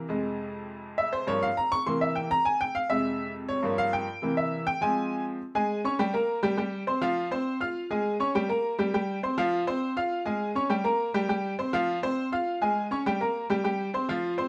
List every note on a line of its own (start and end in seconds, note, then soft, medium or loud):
0.09 1.23 F2 medium
0.09 1.23 C3 medium
0.09 1.24 G#3 medium
0.98 1.12 E5 medium
1.13 1.27 C5 medium
1.27 1.47 G2 medium
1.27 1.47 F3 medium
1.27 1.47 A#3 medium
1.27 1.42 C#5 loud
1.43 1.57 F5 loud
1.57 1.72 A#5 loud
1.72 1.86 C#6 loud
1.86 2.28 C3 medium
1.86 2.29 E3 medium
1.86 2.29 A#3 medium
1.86 2.01 C6 medium
2.01 2.16 E5 medium
2.16 2.30 G5 medium
2.31 2.45 A#5 loud
2.45 2.60 G#5 loud
2.61 2.75 G5 loud
2.75 2.89 F5 medium
2.89 3.59 F2 medium
2.89 3.60 C3 medium
2.89 3.60 G#3 medium
2.89 3.31 E5 medium
3.49 3.76 C#5 medium
3.63 4.05 G2 medium
3.63 4.05 F3 medium
3.63 4.06 A#3 medium
3.78 3.92 F5 loud
3.93 4.34 G5 loud
4.22 4.64 C3 medium
4.22 4.64 E3 medium
4.22 4.65 A#3 medium
4.37 4.65 E5 medium
4.67 4.81 G5 loud
4.81 5.37 F3 medium
4.81 5.38 G#3 medium
4.81 5.38 C4 medium
4.81 5.23 G#5 loud
5.55 5.79 G#3 medium
5.55 5.79 G#4 medium
5.55 5.79 G#5 medium
5.84 5.96 C#4 medium
5.84 5.97 C#5 medium
5.84 5.97 C#6 medium
5.99 6.11 G3 loud
5.99 6.11 G4 medium
5.99 6.12 G5 medium
6.14 6.38 A#3 medium
6.14 6.38 A#4 medium
6.14 6.38 A#5 medium
6.43 6.55 G3 loud
6.43 6.55 G4 loud
6.43 6.55 G5 loud
6.57 6.82 G3 medium
6.57 6.82 G4 medium
6.57 6.82 G5 medium
6.87 6.99 C4 medium
6.87 6.99 C5 medium
6.87 6.99 C6 medium
7.01 7.26 F3 medium
7.01 7.26 F4 loud
7.01 7.26 F5 loud
7.31 7.55 C4 medium
7.31 7.56 C5 medium
7.31 7.56 C6 medium
7.60 7.85 F4 medium
7.60 7.85 F5 medium
7.60 7.85 F6 medium
7.91 8.15 G#3 medium
7.91 8.15 G#4 medium
7.91 8.15 G#5 medium
8.20 8.32 C#4 medium
8.20 8.32 C#5 medium
8.20 8.32 C#6 medium
8.35 8.47 G3 medium
8.35 8.47 G4 medium
8.35 8.47 G5 loud
8.49 8.73 A#3 medium
8.49 8.73 A#4 medium
8.49 8.74 A#5 medium
8.79 8.91 G3 medium
8.79 8.91 G4 medium
8.79 8.91 G5 medium
8.94 9.18 G3 medium
8.94 9.18 G4 medium
8.94 9.18 G5 medium
9.23 9.35 C4 medium
9.23 9.35 C5 medium
9.23 9.35 C6 medium
9.38 9.62 F3 loud
9.38 9.62 F4 loud
9.38 9.62 F5 medium
9.67 9.91 C4 medium
9.67 9.91 C5 medium
9.67 9.91 C6 medium
9.97 10.21 F4 medium
9.97 10.21 F5 medium
9.97 10.21 F6 medium
10.25 10.50 G#3 medium
10.25 10.50 G#4 medium
10.25 10.50 G#5 medium
10.55 10.67 C#4 medium
10.55 10.68 C#5 medium
10.55 10.68 C#6 medium
10.69 10.82 G3 medium
10.69 10.82 G4 medium
10.69 10.82 G5 medium
10.84 11.08 A#3 medium
10.84 11.09 A#4 medium
10.84 11.09 A#5 medium
11.14 11.26 G3 medium
11.14 11.26 G4 loud
11.14 11.27 G5 medium
11.29 11.53 G3 medium
11.29 11.53 G4 medium
11.29 11.53 G5 medium
11.59 11.70 C4 medium
11.59 11.71 C5 medium
11.59 11.71 C6 medium
11.73 11.97 F3 loud
11.73 11.97 F4 loud
11.73 11.97 F5 loud
12.03 12.27 C4 medium
12.03 12.27 C5 loud
12.03 12.27 C6 medium
12.32 12.56 F4 medium
12.32 12.56 F5 medium
12.32 12.56 F6 medium
12.61 12.86 G#3 medium
12.61 12.86 G#4 medium
12.61 12.86 G#5 medium
12.91 13.03 C#4 medium
12.91 13.03 C#5 medium
12.91 13.03 C#6 medium
13.06 13.18 G3 medium
13.06 13.18 G4 medium
13.06 13.18 G5 medium
13.21 13.44 A#3 medium
13.21 13.45 A#4 medium
13.21 13.45 A#5 medium
13.50 13.62 G3 loud
13.50 13.62 G4 medium
13.50 13.62 G5 medium
13.64 13.88 G3 medium
13.64 13.89 G4 medium
13.64 13.89 G5 medium
13.94 14.06 C4 medium
13.94 14.06 C5 medium
13.94 14.06 C6 medium
14.09 14.33 F3 medium
14.09 14.33 F4 loud
14.09 14.33 F5 medium
14.38 14.48 C4 medium
14.38 14.48 C5 medium
14.38 14.48 C6 medium